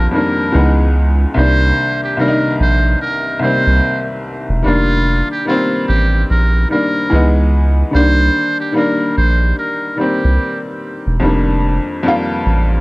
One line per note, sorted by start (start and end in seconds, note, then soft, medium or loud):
0.00 0.11 F2 medium
0.00 0.13 D#3 medium
0.00 0.14 G3 medium
0.00 0.15 A#3 medium
0.00 0.16 D4 medium
0.00 0.56 F4 medium
0.11 0.53 F2 medium
0.11 0.54 D#3 medium
0.11 0.54 G3 medium
0.11 0.55 A#3 medium
0.11 0.75 A#4 medium
0.16 0.56 D4 medium
0.52 1.22 C#2 medium
0.52 1.26 C#2 medium
0.52 1.22 E3 medium
0.52 1.23 G#3 medium
0.52 1.24 B3 medium
0.57 1.24 D#4 medium
1.34 2.01 C2 medium
1.34 1.72 C2 loud
1.34 2.01 D#3 medium
1.34 2.02 G3 medium
1.34 2.03 A#3 medium
1.38 2.03 D4 medium
1.38 1.99 C5 medium
2.04 2.18 G4 medium
2.17 3.12 C2 medium
2.17 3.13 D#3 medium
2.17 3.13 G3 medium
2.17 3.14 A#3 medium
2.17 2.56 A#4 medium
2.22 2.28 D4 medium
2.28 3.18 D#4 loud
2.60 2.96 A#1 medium
2.60 2.98 C5 medium
3.01 3.38 A#4 medium
3.39 4.35 C2 medium
3.39 4.35 D#3 medium
3.39 4.36 G3 medium
3.39 4.04 C5 medium
3.43 4.37 A#3 medium
3.43 4.38 C4 medium
3.67 3.81 C2 medium
4.49 4.63 E1 medium
4.62 5.22 F1 loud
4.62 5.29 D#3 medium
4.62 5.30 G3 medium
4.62 5.31 A#3 medium
4.62 5.33 F4 loud
4.68 5.32 D4 medium
5.31 5.46 G4 medium
5.45 6.41 D#3 medium
5.45 6.42 G3 medium
5.45 6.42 A#3 medium
5.45 5.85 F4 medium
5.50 6.43 C4 medium
5.88 6.24 A1 medium
5.88 6.25 G4 medium
6.30 6.66 A#1 loud
6.30 6.67 A#4 medium
6.69 7.11 D#3 medium
6.69 7.12 G3 medium
6.69 7.13 A#3 medium
6.69 7.32 A#4 medium
6.74 7.13 D4 medium
7.10 7.84 C#2 loud
7.10 7.80 E3 medium
7.10 7.81 G#3 medium
7.10 7.82 B3 medium
7.15 7.82 D#4 medium
7.91 8.30 C2 loud
7.91 8.00 D3 medium
7.91 8.59 G3 medium
7.91 8.60 A#3 medium
7.91 8.56 C5 loud
7.96 8.61 D#3 medium
7.96 8.61 D4 medium
8.60 8.75 G4 medium
8.72 9.69 D#3 medium
8.72 9.69 G3 medium
8.72 9.70 A#3 medium
8.77 9.71 D4 loud
8.77 9.13 A#4 medium
9.18 9.53 A#1 medium
9.18 9.54 C5 medium
9.59 9.95 A#4 medium
9.96 10.92 D#3 medium
9.96 10.93 G3 medium
9.96 10.94 A#3 medium
9.96 10.61 G4 medium
10.01 10.95 C4 medium
10.24 10.38 C2 medium
11.06 11.21 E1 medium
11.20 11.79 F1 loud
11.20 11.87 F2 medium
11.20 11.88 D#3 medium
11.20 11.88 G3 medium
11.24 11.89 A#3 medium
11.24 11.90 D4 medium
12.03 12.80 F2 medium
12.03 12.80 D#3 medium
12.03 12.80 G3 medium
12.03 12.80 A#3 medium
12.08 12.80 F4 loud
12.46 12.80 A1 medium